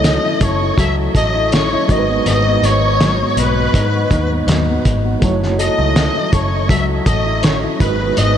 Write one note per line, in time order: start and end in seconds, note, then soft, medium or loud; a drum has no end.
0.00 0.17 C#2 medium
0.00 0.77 F#3 medium
0.00 1.84 A3 medium
0.00 0.23 E4 medium
0.00 1.85 E4 medium
0.00 1.85 F#4 medium
0.00 0.40 A4 medium
0.00 1.86 C#5 medium
0.00 0.44 D#5 medium
0.04 1.51 C#4 medium
0.04 snare loud
0.04 closed hi-hat loud
0.24 0.61 E4 medium
0.41 0.70 F#1 medium
0.41 0.77 A4 medium
0.41 0.79 C#5 medium
0.41 kick medium
0.41 closed hi-hat medium
0.63 0.96 E4 medium
0.78 1.07 C#2 medium
0.78 2.29 F#3 medium
0.78 1.13 A4 medium
0.78 0.95 E5 loud
0.78 kick medium
0.78 closed hi-hat medium
0.97 1.34 E4 medium
1.15 1.74 A1 medium
1.15 1.97 A4 medium
1.15 1.50 D#5 medium
1.15 kick medium
1.15 closed hi-hat medium
1.35 1.71 E4 medium
1.52 1.97 C#4 medium
1.52 1.93 C#5 medium
1.52 snare loud
1.52 closed hi-hat medium
1.72 1.97 E4 medium
1.88 2.19 G#1 medium
1.88 2.25 G#2 medium
1.88 4.80 G#3 medium
1.88 4.81 D#4 medium
1.88 4.82 F#4 medium
1.88 2.27 D#5 medium
1.88 kick medium
1.88 closed hi-hat medium
1.92 1.98 A#4 medium
1.99 4.86 B4 medium
2.09 2.45 B3 medium
2.26 2.56 G#1 medium
2.26 3.73 G#2 medium
2.26 2.62 D#4 medium
2.26 2.66 D#5 loud
2.26 closed hi-hat medium
2.46 2.83 B3 medium
2.62 3.22 G#1 medium
2.62 3.36 D#4 medium
2.62 3.38 C#5 medium
2.62 closed hi-hat medium
2.84 3.19 B3 medium
3.01 4.47 F#3 medium
3.01 snare loud
3.01 closed hi-hat medium
3.20 3.56 B3 medium
3.37 3.67 B1 medium
3.37 3.73 D#4 medium
3.37 4.45 B4 medium
3.37 closed hi-hat medium
3.58 3.94 B3 soft
3.74 4.04 G#2 medium
3.74 5.30 G#2 medium
3.74 4.10 D#4 medium
3.74 kick medium
3.74 closed hi-hat medium
3.95 4.31 B3 medium
4.11 4.40 D#2 medium
4.11 4.83 D#4 medium
4.11 kick medium
4.11 closed hi-hat medium
4.32 4.68 B3 medium
4.47 4.77 D#2 medium
4.47 5.22 F#3 medium
4.47 snare loud
4.47 closed hi-hat medium
4.69 5.04 B3 medium
4.85 5.15 G#1 medium
4.85 5.30 D#4 medium
4.85 kick medium
4.85 closed hi-hat medium
5.05 5.30 B3 medium
5.20 5.68 F#1 medium
5.20 6.69 F#3 medium
5.20 7.76 A3 medium
5.20 7.77 E4 medium
5.20 7.78 F#4 medium
5.20 5.58 A4 medium
5.20 kick loud
5.20 closed hi-hat medium
5.25 7.79 C#5 medium
5.43 5.77 E4 medium
5.43 snare soft
5.59 6.33 A4 medium
5.59 6.34 D#5 medium
5.59 closed hi-hat medium
5.79 6.08 C#2 medium
5.79 6.15 E4 medium
5.96 7.41 C#4 medium
5.96 snare loud
5.96 closed hi-hat medium
6.16 6.53 E4 medium
6.33 6.71 F#1 medium
6.33 6.69 A4 medium
6.33 6.69 C#5 medium
6.33 kick medium
6.33 closed hi-hat medium
6.54 6.88 E4 soft
6.69 6.99 C#2 medium
6.69 8.20 F#3 medium
6.69 7.05 A4 medium
6.69 6.86 E5 medium
6.69 kick medium
6.69 closed hi-hat medium
6.89 7.25 E4 medium
7.06 7.65 A1 medium
7.06 7.89 A4 medium
7.06 7.41 D#5 medium
7.06 kick medium
7.06 closed hi-hat medium
7.26 7.62 E4 medium
7.42 7.88 C#4 medium
7.42 7.60 C#5 medium
7.42 snare loud
7.42 closed hi-hat medium
7.63 7.88 E4 medium
7.79 8.10 G#1 medium
7.79 8.16 G#2 medium
7.79 8.38 G#3 medium
7.79 8.38 D#4 medium
7.79 8.38 F#4 medium
7.79 8.15 B4 medium
7.79 kick medium
7.79 closed hi-hat medium
7.84 8.38 B4 medium
8.00 8.35 B3 medium
8.17 8.38 G#1 medium
8.17 8.38 G#2 medium
8.17 8.38 D#4 medium
8.17 8.38 D#5 medium
8.17 closed hi-hat medium